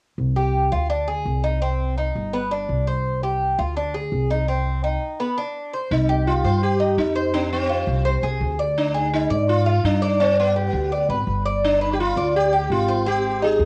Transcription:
0.18 C2
0.36 G4
0.72 D2 F4
0.90 D4
1.08 G#4
1.25 C2
1.44 D#4
1.62 C4
1.98 D#4
2.15 G1
2.33 B3
2.51 D4
2.69 C2
2.87 C5
3.23 G4
3.59 D2 F4
3.77 D4
3.94 G#4
4.12 C2
4.31 D#4
4.48 C4
4.84 D#4
5.20 B3
5.38 D4
5.73 C5
5.91 C2 D#4
6.09 G4
6.27 F4
6.44 G2 C5
6.63 G4
6.80 D#4
6.97 F2 D#4
7.15 C5
7.34 C4 D4
7.52 C4
7.69 F4
7.87 C2
8.05 C5
8.23 C2 G#4
8.41 D2
8.59 D5
8.78 D4
8.94 G#4
9.14 D#4
9.30 G#2 D5
9.49 F4
9.66 F4
9.84 G2 D4
10.02 D5
10.20 C4 D4
10.40 B3
10.56 G4
10.73 D2
10.92 D5
11.09 G#1 B4
11.27 G1
11.46 D5
11.65 D4
11.81 B4
11.93 G4
12.00 F4
12.16 D2 D5
12.36 G4
12.53 G4
12.70 G#1 F4
12.88 C5
13.06 C4 G4
13.42 D#4 G#4
13.59 D#2

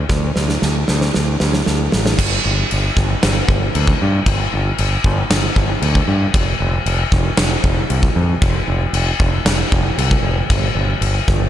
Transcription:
0.09 D2, kick, snare
0.36 D2, snare
0.49 snare
0.62 D2, snare
0.88 D2, snare
1.01 snare
1.14 D2, snare
1.40 D2, snare
1.53 snare
1.66 D2, snare
1.92 A1, snare
2.06 snare
2.19 G1, kick, crash
2.46 G1
2.71 G1, crash
2.97 G1, kick, snare
3.23 G1, snare, crash
3.48 G1, kick
3.75 D2, crash
3.87 kick
4.02 G2
4.26 G1, kick, crash
4.54 G1
4.78 G1, crash
5.04 G1, kick
5.30 G1, snare, crash
5.56 G1, kick
5.82 D2, crash
5.95 kick
6.08 G2
6.34 F1, kick, crash
6.60 F1
6.86 F1, crash
7.12 F1, kick, snare
7.37 F1, snare, crash
7.64 F1, kick
7.90 C2, crash
8.03 kick
8.16 F2
8.42 F1, kick, crash
8.68 F1
8.93 F1, crash
9.20 F1, kick
9.45 F1, snare, crash
9.72 F1, kick
9.98 C2, crash
10.11 kick
10.23 F1
10.50 G1, kick, crash
10.75 G1
11.01 G1, crash
11.28 G1, kick, snare

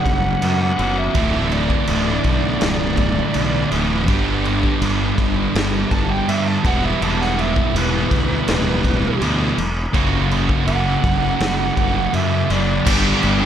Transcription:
Already playing: F#2 C#3 F#3 B3 C#4 F#4 F#5
0.06 F#1 C#4, kick, crash
0.42 F#2 B3, crash
0.62 F#5
0.78 F#1 F#2 C#3 F#3 B3 C#4 F#4, crash
0.98 E5
1.14 D1 D2 A2 D3 E3 A3 D4, kick, crash
1.52 D5, crash
1.70 kick
1.87 D1, crash
2.24 B1, kick, crash
2.61 B0, snare, crash
2.97 kick, crash
3.34 B1, crash
3.71 D1 D2 A2 D3 E3 A3 D4, crash
4.07 G1 G2 D3 G3 B3 D4 G4, kick, crash
4.45 crash
4.63 kick
4.81 G1, crash
5.18 G1, kick, crash
5.55 G1, snare, crash
5.91 G1 A5, kick, crash
6.10 G5
6.28 G2 E5, crash
6.48 A5
6.64 E1 E2 B2 E3 G3 B3 E4 F#5, kick, crash
6.84 E5
7.01 E1 A5, crash
7.21 F#5, snare
7.39 E5, crash
7.56 kick
7.75 E1 B4, crash
8.11 D2, kick, crash
8.48 D1, snare, crash
8.84 kick, crash
9.21 D2 E2 B2 E3 G3 B3 E4, crash
9.58 E1, crash
9.93 F#1 F#2 C#3 F#3 A#3 C#4 F#4, kick, crash
10.31 crash
10.49 kick
10.67 F#1 F#5, crash
11.03 F#1, kick, crash
11.40 F#1, snare, crash
11.77 F#1, kick, crash
12.13 F#2 E5, crash
12.49 F#1 F#2 C#3 F#3 A#3 C#4 F#4 D5, crash
12.86 G1 G2 D3 G3 B3 D4 G4, kick, crash
13.22 G1 G3 B3 D4 G4, crash
13.41 B3 D4 G4

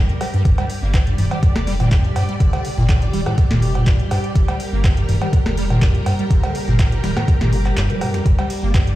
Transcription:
Already playing: G3 G4 A#4
0.09 F2, closed hi-hat
0.21 G3, cross-stick, closed hi-hat, open hi-hat, cowbell
0.34 G2, closed hi-hat
0.45 G1 G2 D5, kick, closed hi-hat
0.58 G3, snare, closed hi-hat, cowbell
0.70 closed hi-hat, open hi-hat
0.82 G1 A#3
0.94 G2, kick, snare, clap, closed hi-hat, cowbell
1.07 G2, closed hi-hat
1.18 D1 G2, closed hi-hat, open hi-hat, mid tom
1.31 G3, snare, closed hi-hat, mid tom, cowbell
1.43 D3, kick, closed hi-hat
1.56 F1, cross-stick, snare, closed hi-hat
1.67 G3, snare, open hi-hat
1.80 A#2, closed hi-hat, mid tom, cowbell
1.91 G1 F2, kick, snare, clap, closed hi-hat
2.04 G2, closed hi-hat
2.16 G2, closed hi-hat, open hi-hat, cowbell
2.29 G3, closed hi-hat
2.40 G1 D3, kick, closed hi-hat
2.53 snare, closed hi-hat, cowbell
2.65 C3, open hi-hat
2.78 G1 A#2, snare
2.89 kick, snare, clap, closed hi-hat, cowbell
3.02 G2, closed hi-hat
3.13 D1 G3, closed hi-hat, open hi-hat, mid tom
3.26 A2, cross-stick, mid tom, cowbell
3.38 D3, kick, closed hi-hat
3.51 F1 A#2, snare, closed hi-hat, mid tom
3.62 C3, closed hi-hat, open hi-hat
3.75 A#2, closed hi-hat, cowbell
3.87 G1 A#2, kick, snare, clap, closed hi-hat
4.00 G2, closed hi-hat
4.11 G2, cross-stick, closed hi-hat, open hi-hat, cowbell
4.24 closed hi-hat
4.35 G1 G2 A#4, kick, closed hi-hat
4.48 G3, snare, closed hi-hat, cowbell
4.60 closed hi-hat, open hi-hat
4.73 G1 A#3
4.84 G2, kick, snare, clap, closed hi-hat, cowbell
4.97 G2, closed hi-hat
5.09 D1 G2, closed hi-hat, open hi-hat, mid tom
5.22 G3, mid tom, cowbell
5.33 D3, kick, closed hi-hat
5.46 F1, cross-stick, snare, closed hi-hat
5.57 G3, closed hi-hat, open hi-hat
5.70 A#2, mid tom, cowbell
5.82 G1, kick, snare, clap, closed hi-hat
5.95 G2, closed hi-hat
6.06 G2, closed hi-hat, open hi-hat, cowbell
6.19 G3, closed hi-hat
6.31 G1 D3, kick, closed hi-hat
6.43 snare, closed hi-hat, cowbell
6.55 C3, open hi-hat
6.68 G1 A#2, snare, closed hi-hat
6.79 A#2, kick, snare, clap, closed hi-hat, cowbell
6.92 G2, closed hi-hat
7.04 D1 G3, snare, closed hi-hat, open hi-hat, mid tom
7.17 A2, cross-stick, snare, closed hi-hat, mid tom, cowbell
7.28 D3, kick, closed hi-hat
7.41 G1 A#2, snare, closed hi-hat, mid tom
7.52 F3, closed hi-hat, open hi-hat
7.65 clap, closed hi-hat, cowbell
7.77 F1 G2, snare, clap, closed hi-hat
7.90 G3, closed hi-hat
8.01 G2, cross-stick, closed hi-hat, open hi-hat, cowbell
8.14 F2, snare, closed hi-hat
8.26 G1 G2 D5, kick, closed hi-hat
8.38 G3, snare, closed hi-hat, cowbell
8.50 closed hi-hat, open hi-hat, ride
8.63 G1 A#3
8.74 G2, kick, snare, clap, closed hi-hat, cowbell
8.87 G2, closed hi-hat

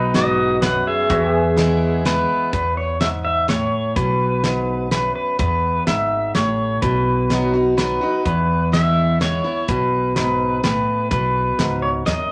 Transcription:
Already playing: B1 B2 D#4 F#4 B4 D#5
0.14 G#2 F#4 D#5, snare, closed hi-hat
0.62 F#2 B4 F#5, snare, closed hi-hat
0.87 G#4 E5
1.10 E2 F#4 B4 E5, kick, closed hi-hat
1.35 G#4
1.56 E3 G#3 B3 E4, snare, closed hi-hat
2.05 E3 G#3 B3 E4 B4, snare, closed hi-hat
2.53 E2 B4, kick, closed hi-hat
2.77 C#5
3.00 G#2 E5, snare, closed hi-hat
3.25 E5
3.48 A2 C#5, snare, closed hi-hat
3.96 B1 B2 B4, kick, closed hi-hat
4.44 G#2, snare, closed hi-hat
4.91 F#2 B4, snare, closed hi-hat
5.16 B4
5.39 E2 B4, kick, closed hi-hat
5.87 G#1 G#2 E5, snare, closed hi-hat
6.34 A1 A2 C#5, snare, closed hi-hat
6.82 B1 B2 B4, kick, closed hi-hat
7.30 F#3 B3 D#4 F#4, snare, closed hi-hat
7.54 D#4 F#4
7.77 F#3 B3 D#4 F#4 B4, snare, closed hi-hat
8.01 D#4 F#4
8.25 E2 B4, kick, closed hi-hat
8.72 E3 G#3 B3 E4 E5, snare, closed hi-hat
9.20 E3 G#3 B3 E4 C#5, snare, closed hi-hat
9.44 B3 E4
9.68 B1 B2 B4, kick, closed hi-hat
10.16 G#2 B4, snare, closed hi-hat
10.63 A2 B4, snare, closed hi-hat
11.11 B1 B2 B4, kick, closed hi-hat
11.59 C#2 G#2, snare, closed hi-hat
11.82 C#5
12.06 D#2 F#2 D#5, snare, closed hi-hat

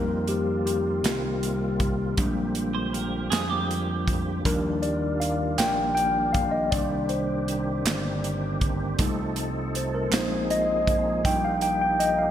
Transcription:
Already playing: F2 D#3 G3 A#3 C4 D#4 F4 A#4
0.28 G4, closed hi-hat
0.66 G4, closed hi-hat
1.04 C2, snare, closed hi-hat
1.43 closed hi-hat
1.80 kick, closed hi-hat
2.17 A#1 D3 F3 G3 G#3 C4 D4 G4, kick, closed hi-hat
2.55 closed hi-hat
2.75 C5
2.93 A#4, closed hi-hat
3.30 F2 G#4, snare, closed hi-hat
3.50 G4
3.71 closed hi-hat
4.08 kick, closed hi-hat
4.45 D#2 D#3 F3 G3 D4 F4 A#4, kick, closed hi-hat
4.82 D5, closed hi-hat
5.20 F5, closed hi-hat
5.58 A#1 G5, snare, clap, closed hi-hat
5.95 G5, closed hi-hat
6.33 F5, kick, closed hi-hat
6.51 D#5
6.71 C2 D#3 A#3 C4 D4 G4 D5, kick, closed hi-hat
7.09 C5, closed hi-hat
7.48 closed hi-hat
7.85 G1, snare, clap, closed hi-hat
8.24 closed hi-hat
8.61 kick, closed hi-hat
8.98 C2 F3 G3 A3 D#4 A4, kick, closed hi-hat
9.36 closed hi-hat
9.75 C5, closed hi-hat
9.95 A#4
10.11 A#1 G#3 A#3 C4 D#4 G#4 C5, snare, clap, closed hi-hat
10.50 D#5, closed hi-hat
10.87 kick, closed hi-hat
11.24 A#1 G3 A#3 D#4 G4 G5, kick, closed hi-hat
11.45 F5
11.61 G5, closed hi-hat
11.81 G5
12.00 D#5, closed hi-hat
12.19 F5

